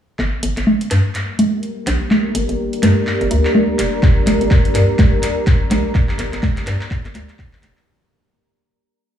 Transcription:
0.19 0.37 G1 loud
0.19 7.87 G4 medium
0.19 clap soft
0.33 7.87 A#4 medium
0.43 0.53 G1 medium
0.43 closed hi-hat medium
0.57 0.64 G1 medium
0.57 clap soft
0.57 closed hi-hat soft
0.67 high conga medium
0.81 closed hi-hat soft
0.91 1.01 G2 medium
0.91 clap soft
0.91 closed hi-hat medium
1.15 clap soft
1.15 closed hi-hat soft
1.23 7.87 A#5 medium
1.34 7.87 D5 medium
1.39 closed hi-hat medium
1.39 high conga medium
1.63 closed hi-hat soft
1.87 1.97 A#1 loud
1.87 clap medium
1.87 closed hi-hat medium
2.11 clap medium
2.11 high conga medium
2.35 2.45 G1 medium
2.35 closed hi-hat medium
2.49 2.56 G1 medium
2.49 closed hi-hat soft
2.73 closed hi-hat soft
2.83 2.93 G2 medium
2.83 clap medium
2.83 closed hi-hat medium
2.83 high conga medium
3.07 clap medium
3.21 3.28 G1 medium
3.21 closed hi-hat soft
3.31 3.41 D2 loud
3.31 closed hi-hat medium
3.45 clap medium
3.55 high conga medium
3.79 3.89 F1 medium
3.79 clap medium
3.79 closed hi-hat medium
4.03 4.21 G1 loud
4.03 kick loud
4.03 clap medium
4.27 4.37 G1 medium
4.27 clap medium
4.27 closed hi-hat loud
4.27 high conga medium
4.41 4.48 G1 medium
4.41 closed hi-hat soft
4.51 kick loud
4.51 clap medium
4.65 closed hi-hat soft
4.75 4.85 G2 medium
4.75 clap medium
4.75 closed hi-hat medium
4.99 kick loud
4.99 clap medium
4.99 closed hi-hat soft
4.99 high conga medium
5.23 clap medium
5.23 closed hi-hat loud
5.47 kick loud
5.47 clap medium
5.47 closed hi-hat soft
5.71 5.81 A#1 loud
5.71 clap medium
5.71 closed hi-hat medium
5.71 high conga medium
5.95 kick loud
5.95 clap medium
6.09 clap medium
6.19 6.29 G1 medium
6.19 clap medium
6.19 closed hi-hat loud
6.33 6.40 G1 medium
6.33 clap medium
6.33 closed hi-hat soft
6.43 kick loud
6.43 clap loud
6.43 high conga medium
6.57 clap medium
6.57 closed hi-hat soft
6.67 6.77 G2 medium
6.67 clap loud
6.67 closed hi-hat medium
6.81 clap medium
6.91 kick loud
6.91 clap loud
7.05 7.12 G1 medium
7.05 clap medium
7.05 closed hi-hat soft
7.15 7.25 D2 loud
7.15 clap loud
7.15 closed hi-hat loud
7.15 high conga medium
7.29 clap medium
7.29 closed hi-hat soft
7.39 kick loud
7.39 clap loud
7.53 clap medium
7.63 7.73 F1 medium
7.63 clap loud
7.63 closed hi-hat loud
7.77 clap loud

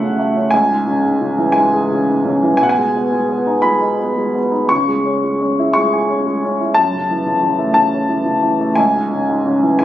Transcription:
0.00 0.47 F#2 medium
0.00 0.02 C#3 medium
0.00 0.50 C#3 soft
0.00 0.19 A3 medium
0.00 0.35 C#4 soft
0.00 0.49 C#5 soft
0.00 0.52 E5 medium
0.00 0.53 F#5 medium
0.19 0.51 A3 medium
0.36 0.52 C#4 soft
0.51 2.55 C#2 medium
0.51 1.49 G#5 medium
0.69 1.03 G#2 soft
0.87 1.20 C#3 medium
1.05 1.54 G#2 soft
1.21 1.90 C#3 medium
1.38 2.41 E3 medium
1.52 2.07 G#2 medium
1.52 2.53 G#5 medium
1.73 2.56 G#4 medium
1.91 2.24 C#3 medium
2.08 2.57 G#2 medium
2.25 2.58 C#3 medium
2.43 2.59 E3 medium
2.57 4.68 B2 medium
2.57 2.65 G#5 medium
2.63 2.71 F#5 medium
2.69 3.65 G#5 medium
2.77 3.11 G#3 soft
2.95 3.28 B3 soft
3.12 3.62 G#3 soft
3.29 3.98 B3 medium
3.47 4.50 D#4 soft
3.62 4.15 G#3 medium
3.62 4.39 B5 medium
3.82 4.68 D#5 soft
3.99 4.34 B3 soft
4.17 4.69 G#3 soft
4.35 4.69 B3 soft
4.51 4.69 D#4 soft
4.69 6.73 C#3 soft
4.69 5.71 C#6 medium
4.88 5.22 G#3 soft
5.05 5.40 C#4 soft
5.24 5.74 G#3 soft
5.42 6.08 C#4 soft
5.59 6.59 E4 soft
5.73 6.25 G#3 medium
5.73 6.79 C#6 medium
5.93 6.75 G#5 soft
6.10 6.43 C#4 soft
6.27 6.75 G#3 soft
6.44 6.76 C#4 soft
6.60 6.76 E4 soft
6.74 8.74 F#2 medium
6.74 7.71 A5 medium
6.94 7.25 C#3 soft
7.11 7.41 E3 soft
7.26 7.75 C#3 soft
7.43 8.08 E3 medium
7.59 8.59 A3 soft
7.74 8.24 C#3 medium
7.74 8.73 A5 medium
7.93 8.75 C#5 soft
8.09 8.41 E3 medium
8.26 8.76 C#3 soft
8.43 8.76 E3 medium
8.60 8.77 A3 medium
8.75 9.85 C#2 medium
8.75 9.77 G#5 medium
8.95 9.27 G#2 soft
9.11 9.44 C#3 soft
9.28 9.77 G#2 medium
9.45 9.85 C#3 medium
9.63 9.85 E3 medium
9.79 9.85 G#2 medium
9.79 9.85 G#5 medium

